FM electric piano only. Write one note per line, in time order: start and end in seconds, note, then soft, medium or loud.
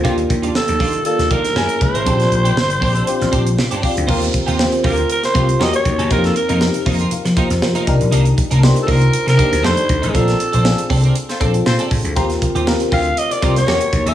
0.04 0.77 A#3 medium
0.04 0.77 D4 medium
0.04 0.78 F4 medium
0.04 0.78 G4 medium
1.05 1.55 A#3 medium
1.05 1.56 D4 medium
1.05 1.56 F4 medium
1.05 1.57 A4 medium
1.56 1.77 A#3 medium
1.56 1.77 C#4 medium
1.56 1.77 E4 medium
1.56 1.77 G#4 medium
1.81 2.00 A#3 medium
1.81 2.00 C#4 medium
1.81 2.00 E4 medium
1.81 2.01 G#4 medium
2.07 2.79 C4 medium
2.07 2.80 D4 medium
2.07 2.80 F4 medium
2.07 2.80 G4 medium
3.07 3.62 C4 medium
3.07 3.62 D4 medium
3.07 3.63 F4 medium
3.07 3.63 G4 loud
3.84 4.02 C4 medium
3.84 4.02 D4 medium
3.84 4.03 F4 medium
3.84 4.03 G4 medium
4.09 4.46 C4 loud
4.09 4.46 F4 medium
4.09 4.46 G4 medium
4.09 4.46 A#4 medium
4.59 5.14 C4 medium
4.59 5.14 F4 medium
4.59 5.14 G4 medium
4.59 5.14 C5 medium
5.34 5.60 C4 medium
5.34 5.60 F4 medium
5.34 5.59 G4 medium
5.34 5.61 C5 medium
5.59 6.01 C#4 medium
5.59 6.01 F#4 medium
5.59 6.01 G4 medium
5.59 6.02 A#4 medium
6.10 6.47 C4 medium
6.10 6.48 D#4 medium
6.10 6.48 G4 medium
6.10 6.48 A#4 medium
6.60 7.15 C4 medium
6.60 7.16 D#4 medium
6.60 7.12 G4 medium
6.60 7.11 A#4 medium
7.12 7.36 F4 medium
7.12 7.36 A#4 medium
7.37 7.61 G4 medium
7.37 7.61 C5 medium
7.62 8.10 F4 medium
7.62 7.87 A#4 medium
7.87 8.49 D4 medium
7.87 8.49 D#4 medium
7.87 8.49 G4 medium
7.87 8.49 A#4 loud
8.63 9.18 D4 medium
8.63 9.18 D#4 medium
8.63 9.18 G4 medium
8.63 9.18 C5 medium
9.38 9.62 D4 medium
9.38 9.62 D#4 medium
9.38 9.63 G4 medium
9.38 9.65 A#4 medium
9.63 10.05 D4 medium
9.63 10.05 D#4 medium
9.63 10.05 G4 medium
9.63 10.06 A4 medium
10.14 10.51 C4 medium
10.14 10.51 D4 medium
10.14 10.52 F4 medium
10.14 10.52 A4 medium
10.64 11.19 C4 medium
10.64 11.19 D4 medium
10.64 11.19 F4 medium
10.64 10.72 G#4 medium
10.71 11.23 A4 medium
11.40 11.95 C4 medium
11.40 11.95 D4 medium
11.40 11.95 F4 medium
11.40 11.95 A4 medium
12.15 12.53 C4 medium
12.15 12.53 F4 medium
12.15 12.53 G4 medium
12.15 12.54 A#4 loud
12.67 13.21 C4 medium
12.67 13.22 F4 medium
12.67 13.22 G4 medium
12.67 13.22 A#4 loud
13.42 13.68 C4 medium
13.42 13.68 F4 medium
13.42 13.67 G4 medium
13.42 13.67 A#4 medium
13.67 14.09 C#4 medium
13.67 14.09 F#4 medium
13.67 14.09 G4 medium
13.67 14.09 A#4 medium